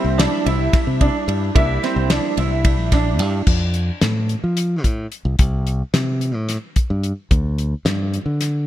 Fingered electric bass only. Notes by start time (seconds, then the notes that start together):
0.04 C2
0.46 C2
0.87 C3
1.28 G2
1.56 C2
1.96 C2
2.38 C2
2.79 A#1
3.20 G2
3.47 F2
4.02 A2
4.44 F3
4.85 A2
5.25 C2
5.39 C2
5.94 C3
6.35 A2
6.90 G2
7.31 D2
7.85 G2
8.26 D3